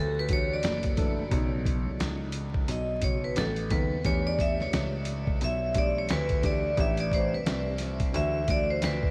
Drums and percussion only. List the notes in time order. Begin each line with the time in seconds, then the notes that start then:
0.29 kick, closed hi-hat
0.63 snare, closed hi-hat
0.83 kick, closed hi-hat
0.97 kick, closed hi-hat
1.31 kick, closed hi-hat
1.66 kick, closed hi-hat
2.00 snare, closed hi-hat
2.32 closed hi-hat
2.54 kick
2.68 closed hi-hat
3.02 kick, closed hi-hat
3.36 snare, closed hi-hat
3.56 closed hi-hat
3.70 kick, closed hi-hat
4.05 kick, closed hi-hat
4.39 kick, closed hi-hat
4.60 snare
4.73 snare, closed hi-hat
5.05 closed hi-hat
5.27 kick
5.41 closed hi-hat
5.74 kick, closed hi-hat
6.09 snare, closed hi-hat
6.29 kick, closed hi-hat
6.43 kick, closed hi-hat
6.77 kick, closed hi-hat
6.97 closed hi-hat
7.12 kick, closed hi-hat
7.46 snare, closed hi-hat
7.78 snare, closed hi-hat
8.00 kick, closed hi-hat
8.14 closed hi-hat
8.48 kick, closed hi-hat
8.82 snare, closed hi-hat
9.03 kick